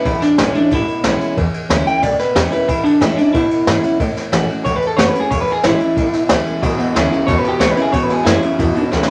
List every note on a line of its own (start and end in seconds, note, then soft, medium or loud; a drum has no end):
0.05 0.21 B1 medium
0.05 0.68 E2 medium
0.05 0.22 E4 medium
0.05 kick loud
0.05 ride medium
0.22 0.38 D4 medium
0.22 muted upright bass stroke medium
0.22 snare soft
0.22 ride medium
0.38 0.54 A1 loud
0.38 0.54 E3 loud
0.38 0.54 G#3 medium
0.38 0.55 C#4 loud
0.38 0.54 E4 loud
0.38 snare loud
0.38 ride medium
0.55 0.71 C#4 soft
0.55 0.73 D4 medium
0.55 0.71 E4 medium
0.55 muted upright bass stroke medium
0.55 ride medium
0.71 0.87 G#1 medium
0.71 1.34 B2 medium
0.71 1.36 E4 loud
0.71 kick loud
0.71 ride medium
0.88 muted upright bass stroke medium
0.88 ride medium
1.04 1.20 B1 loud
1.04 1.35 E3 medium
1.04 1.35 G#3 medium
1.04 1.36 C#4 medium
1.04 1.36 E4 medium
1.04 snare loud
1.04 ride medium
1.20 muted upright bass stroke medium
1.20 ride medium
1.37 1.53 E2 loud
1.37 2.00 E2 medium
1.37 kick loud
1.37 ride medium
1.54 ride medium
1.69 1.85 D2 loud
1.69 1.85 E3 medium
1.69 1.86 G#3 loud
1.69 1.86 C#4 loud
1.69 1.84 E4 loud
1.69 snare loud
1.69 ride medium
1.86 2.03 C#4 medium
1.86 2.02 E4 medium
1.86 2.03 G5 loud
1.86 muted upright bass stroke medium
1.86 ride medium
2.02 2.18 C#2 medium
2.02 2.65 B2 medium
2.02 2.19 D5 medium
2.02 kick loud
2.02 ride medium
2.19 2.35 B4 medium
2.19 muted upright bass stroke medium
2.19 snare soft
2.19 ride medium
2.35 2.51 E2 medium
2.35 2.51 E3 medium
2.35 2.51 G#3 medium
2.35 2.51 C#4 medium
2.35 2.50 E4 medium
2.35 2.51 G4 medium
2.35 snare loud
2.35 ride medium
2.52 2.68 C#4 medium
2.52 2.67 E4 medium
2.52 2.68 B4 medium
2.52 ride medium
2.68 3.31 E2 medium
2.68 2.84 G#2 medium
2.68 2.84 E4 medium
2.68 kick loud
2.68 ride medium
2.84 3.00 D4 loud
2.84 muted upright bass stroke soft
2.84 ride medium
3.00 3.17 A2 loud
3.00 3.16 E3 medium
3.00 3.17 G#3 medium
3.00 3.17 C#4 medium
3.00 3.16 E4 loud
3.00 snare loud
3.00 ride medium
3.17 3.34 C#4 medium
3.17 3.33 D4 medium
3.17 3.33 E4 medium
3.17 muted upright bass stroke medium
3.17 ride medium
3.33 3.49 B2 medium
3.33 3.97 B2 loud
3.33 3.97 E4 loud
3.33 kick loud
3.33 ride medium
3.50 muted upright bass stroke medium
3.50 ride medium
3.67 3.83 G#2 loud
3.67 3.83 E3 medium
3.67 3.83 G#3 medium
3.67 3.83 C#4 medium
3.67 3.82 E4 medium
3.67 snare loud
3.67 ride medium
3.83 3.99 C#4 soft
3.83 3.99 E4 medium
3.83 muted upright bass stroke medium
3.83 ride medium
4.00 4.15 A2 medium
4.00 4.62 A2 medium
4.00 kick loud
4.00 ride medium
4.15 muted upright bass stroke medium
4.15 snare soft
4.15 ride medium
4.32 4.48 A1 loud
4.32 4.48 E3 loud
4.32 4.48 A3 medium
4.32 4.48 C#4 medium
4.32 4.47 F#4 loud
4.32 snare loud
4.32 ride medium
4.48 4.65 C#4 medium
4.48 4.64 F#4 medium
4.48 muted upright bass stroke medium
4.48 ride medium
4.64 4.81 C#2 medium
4.64 5.27 E2 medium
4.64 4.75 C#5 loud
4.64 kick loud
4.64 ride medium
4.76 4.87 B4 medium
4.82 ride medium
4.87 4.98 A4 medium
4.97 5.14 F#1 loud
4.97 5.13 E3 medium
4.97 5.14 A3 medium
4.97 5.14 C#4 medium
4.97 5.13 F#4 medium
4.97 5.08 C#5 loud
4.97 snare loud
4.97 ride loud
5.08 5.19 B4 medium
5.14 5.31 C#4 medium
5.14 5.30 F#4 medium
5.14 ride medium
5.20 5.31 G#4 loud
5.30 5.46 E1 loud
5.30 5.93 E2 medium
5.30 5.41 C#5 medium
5.30 kick loud
5.30 ride medium
5.41 5.52 B4 medium
5.47 ride medium
5.52 5.63 G#4 medium
5.63 5.80 G#1 loud
5.63 5.79 E3 medium
5.63 5.80 G#3 loud
5.63 5.80 C#4 medium
5.63 6.28 E4 loud
5.63 5.79 E4 medium
5.63 snare loud
5.63 ride medium
5.80 5.97 C#4 medium
5.80 5.96 E4 medium
5.80 muted upright bass stroke medium
5.80 ride medium
5.97 6.12 B1 loud
5.97 6.59 B2 medium
5.97 kick loud
5.97 ride medium
6.13 muted upright bass stroke medium
6.13 snare soft
6.13 ride medium
6.29 6.45 C#2 medium
6.29 6.61 E3 medium
6.29 6.61 G#3 medium
6.29 6.61 C#4 medium
6.29 6.61 E4 medium
6.29 snare loud
6.29 ride medium
6.46 ride medium
6.62 6.78 B1 loud
6.62 6.77 E2 medium
6.62 7.25 E2 medium
6.62 6.77 B2 loud
6.62 kick loud
6.62 ride medium
6.78 6.93 E2 medium
6.78 6.93 B2 medium
6.78 muted upright bass stroke medium
6.78 ride medium
6.94 7.11 D2 loud
6.94 7.09 E2 medium
6.94 7.10 C#3 loud
6.94 7.11 E3 medium
6.94 7.11 G#3 medium
6.94 7.11 C#4 loud
6.94 7.10 E4 loud
6.94 snare loud
6.94 ride medium
7.11 7.26 E2 medium
7.11 7.26 C#3 medium
7.11 7.28 C#4 medium
7.11 7.27 E4 medium
7.11 muted upright bass stroke medium
7.11 ride medium
7.27 7.42 E2 medium
7.27 7.43 E2 medium
7.27 7.42 B2 loud
7.27 7.90 B2 medium
7.27 7.39 C#5 loud
7.27 kick loud
7.27 ride medium
7.39 7.49 B4 medium
7.43 7.58 E2 medium
7.43 7.59 B2 medium
7.43 ride medium
7.48 7.60 G4 loud
7.59 7.76 C#2 medium
7.59 7.75 E2 medium
7.59 7.75 C#3 medium
7.59 7.76 E3 medium
7.59 7.76 G#3 medium
7.59 7.76 C#4 medium
7.59 7.75 E4 medium
7.59 7.71 C#5 loud
7.59 snare loud
7.59 ride loud
7.71 7.82 B4 medium
7.76 7.92 E2 medium
7.76 7.92 C#3 medium
7.76 7.93 C#4 medium
7.76 7.92 E4 medium
7.76 ride medium
7.82 7.93 G#4 medium
7.92 8.55 E2 medium
7.92 8.08 E2 medium
7.92 8.09 G#2 medium
7.92 8.08 B2 medium
7.92 8.03 C#5 loud
7.92 kick loud
7.92 ride medium
8.03 8.13 B4 medium
8.09 8.24 E2 medium
8.09 8.25 B2 medium
8.09 8.25 G#4 medium
8.09 muted upright bass stroke soft
8.09 ride medium
8.24 8.41 E2 medium
8.24 8.42 F#2 loud
8.24 8.41 C#3 loud
8.24 8.42 E3 loud
8.24 8.42 G#3 loud
8.24 8.42 C#4 loud
8.24 8.89 E4 loud
8.24 8.41 E4 loud
8.24 snare loud
8.24 ride medium
8.42 8.57 E2 medium
8.42 8.57 C#3 medium
8.42 8.59 C#4 soft
8.42 8.58 E4 medium
8.42 ride medium
8.59 8.74 E2 medium
8.59 8.75 E2 medium
8.59 8.74 B2 medium
8.59 9.10 B2 medium
8.59 kick loud
8.59 ride medium
8.75 8.90 E2 medium
8.75 8.90 B2 medium
8.75 muted upright bass stroke medium
8.75 ride medium
8.92 9.08 C#2 loud
8.92 9.06 E2 medium
8.92 9.07 C#3 loud
8.92 9.07 E3 medium
8.92 9.08 G#3 medium
8.92 9.08 C#4 medium
8.92 9.07 E4 medium
8.92 snare medium
9.03 snare medium